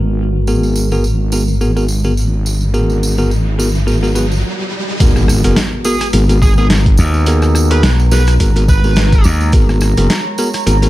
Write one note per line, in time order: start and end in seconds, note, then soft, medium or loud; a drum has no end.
0.00 4.44 G#1 medium
0.00 4.40 G#3 medium
0.00 4.40 B3 medium
0.00 4.40 F#4 medium
0.00 4.40 A#4 medium
0.47 0.88 B3 medium
0.47 0.88 F#4 medium
0.47 0.88 G#4 medium
0.47 0.88 A#4 loud
0.47 tambourine medium
0.47 riser medium
0.63 tambourine soft
0.76 tambourine medium
0.92 1.04 B3 medium
0.92 1.04 F#4 medium
0.92 1.04 G#4 medium
0.92 1.04 A#4 loud
0.92 tambourine soft
1.04 tambourine medium
1.32 1.42 B3 medium
1.32 1.42 F#4 medium
1.32 1.42 G#4 medium
1.32 1.42 A#4 loud
1.32 tambourine medium
1.48 tambourine soft
1.61 1.70 B3 medium
1.61 1.70 F#4 medium
1.61 1.70 G#4 medium
1.61 1.70 A#4 medium
1.61 tambourine medium
1.77 1.84 B3 medium
1.77 1.84 F#4 medium
1.77 1.84 G#4 medium
1.77 1.84 A#4 medium
1.77 tambourine soft
1.88 tambourine medium
2.04 2.12 B3 medium
2.04 2.12 F#4 medium
2.04 2.12 G#4 medium
2.04 2.12 A#4 medium
2.04 tambourine soft
2.17 tambourine medium
2.46 tambourine medium
2.61 tambourine soft
2.74 3.14 B3 medium
2.74 3.14 F#4 medium
2.74 3.14 G#4 medium
2.74 3.14 A#4 loud
2.74 tambourine soft
2.90 tambourine soft
3.03 tambourine medium
3.18 3.30 B3 medium
3.18 3.30 F#4 medium
3.18 3.30 G#4 medium
3.18 3.30 A#4 loud
3.18 tambourine soft
3.31 tambourine medium
3.59 3.68 B3 medium
3.59 3.68 F#4 medium
3.59 3.68 G#4 medium
3.59 3.68 A#4 loud
3.59 tambourine loud
3.75 tambourine soft
3.87 3.97 B3 medium
3.87 3.97 F#4 medium
3.87 3.97 G#4 medium
3.87 3.97 A#4 loud
3.87 tambourine soft
4.03 4.10 B3 medium
4.03 4.10 F#4 medium
4.03 4.10 G#4 medium
4.03 4.10 A#4 medium
4.03 tambourine soft
4.15 4.25 B3 medium
4.15 4.25 F#4 medium
4.15 4.25 G#4 medium
4.15 4.25 B4 loud
4.15 tambourine medium
4.32 tambourine soft
5.00 5.42 G#1 loud
5.00 10.89 G#3 medium
5.00 5.41 B3 loud
5.00 9.53 B3 medium
5.00 5.41 F#4 medium
5.00 10.89 F#4 medium
5.00 5.41 G#4 medium
5.00 5.41 A#4 loud
5.00 10.89 A#5 medium
5.00 kick loud
5.00 closed hi-hat medium
5.00 tambourine medium
5.00 impact medium
5.16 cross-stick soft
5.16 tambourine soft
5.28 cross-stick medium
5.28 tambourine loud
5.44 5.55 F#1 loud
5.44 5.56 B3 loud
5.44 5.56 F#4 medium
5.44 5.56 G#4 medium
5.44 5.56 A#4 loud
5.44 closed hi-hat medium
5.44 tambourine soft
5.56 snare loud
5.56 closed hi-hat medium
5.56 tambourine medium
5.85 5.95 B3 loud
5.85 5.95 F#4 medium
5.85 6.05 G#4 medium
5.85 5.95 G#4 medium
5.85 5.95 A#4 loud
5.85 tambourine loud
6.01 cross-stick medium
6.01 closed hi-hat medium
6.01 tambourine soft
6.13 6.96 G#1 medium
6.13 6.23 B3 medium
6.13 6.23 F#4 medium
6.13 6.23 G#4 medium
6.13 6.23 A#4 loud
6.13 closed hi-hat medium
6.13 tambourine medium
6.29 6.37 B3 medium
6.29 6.37 F#4 medium
6.29 6.37 G#4 medium
6.29 6.37 A#4 loud
6.29 closed hi-hat soft
6.29 tambourine soft
6.42 6.52 G#4 medium
6.42 kick loud
6.42 tambourine medium
6.58 6.65 B3 medium
6.58 6.65 F#4 medium
6.58 6.66 G#4 medium
6.58 6.65 G#4 medium
6.58 6.65 A#4 loud
6.58 tambourine soft
6.70 snare loud
6.70 closed hi-hat medium
6.70 tambourine soft
6.86 kick loud
6.86 closed hi-hat soft
6.97 7.82 D#2 loud
6.97 tambourine loud
7.14 tambourine soft
7.26 7.67 B3 loud
7.26 7.67 F#4 medium
7.26 7.67 G#4 medium
7.26 7.68 A#4 loud
7.26 closed hi-hat medium
7.26 tambourine medium
7.42 cross-stick soft
7.42 tambourine soft
7.55 cross-stick medium
7.55 tambourine loud
7.71 7.83 B3 loud
7.71 7.83 F#4 medium
7.71 7.83 G#4 medium
7.71 7.83 A#4 loud
7.71 7.89 B4 medium
7.71 closed hi-hat medium
7.71 tambourine soft
7.83 8.38 B1 loud
7.83 snare loud
7.83 closed hi-hat medium
7.83 tambourine medium
7.99 tambourine soft
8.11 8.21 B3 loud
8.11 8.21 F#4 medium
8.11 8.21 G#4 medium
8.11 8.21 A#4 loud
8.11 8.32 B4 medium
8.11 snare soft
8.11 tambourine medium
8.27 cross-stick medium
8.27 closed hi-hat medium
8.27 tambourine soft
8.40 9.23 G#1 loud
8.40 8.50 B3 medium
8.40 8.50 F#4 medium
8.40 8.50 G#4 medium
8.40 8.50 A#4 loud
8.40 kick medium
8.40 closed hi-hat medium
8.40 tambourine medium
8.56 8.63 B3 medium
8.56 8.63 F#4 medium
8.56 8.63 G#4 medium
8.56 8.63 A#4 loud
8.56 closed hi-hat soft
8.56 tambourine soft
8.68 9.25 B4 medium
8.68 kick loud
8.68 tambourine loud
8.84 8.92 B3 medium
8.84 8.92 F#4 medium
8.84 8.92 G#4 medium
8.84 8.92 A#4 medium
8.84 tambourine soft
8.96 snare loud
8.96 closed hi-hat medium
8.96 tambourine medium
9.12 kick loud
9.12 closed hi-hat soft
9.12 tambourine soft
9.24 9.52 D#2 medium
9.24 tambourine loud
9.41 tambourine soft
9.52 9.95 G#1 loud
9.52 9.94 B3 loud
9.52 9.94 F#4 medium
9.52 9.94 G#4 medium
9.52 9.94 A#4 loud
9.52 10.89 C#5 medium
9.52 kick loud
9.52 closed hi-hat medium
9.52 tambourine medium
9.69 cross-stick soft
9.69 tambourine soft
9.81 cross-stick soft
9.81 tambourine loud
9.97 10.08 F#1 loud
9.97 10.09 B3 medium
9.97 10.09 F#4 medium
9.97 10.09 G#4 medium
9.97 10.09 A#4 loud
9.97 closed hi-hat medium
9.97 tambourine soft
10.10 snare loud
10.10 closed hi-hat medium
10.10 tambourine medium
10.38 10.48 B3 loud
10.38 10.48 F#4 medium
10.38 10.48 G#4 medium
10.38 10.48 A#4 loud
10.38 tambourine medium
10.53 cross-stick medium
10.53 closed hi-hat medium
10.53 tambourine soft
10.67 10.89 G#1 loud
10.67 10.76 B3 medium
10.67 10.76 F#4 medium
10.67 10.76 G#4 medium
10.67 10.76 A#4 loud
10.67 closed hi-hat medium
10.67 tambourine medium
10.82 10.89 B3 medium
10.82 10.89 F#4 medium
10.82 10.89 G#4 medium
10.82 10.89 A#4 loud
10.82 closed hi-hat soft
10.82 tambourine soft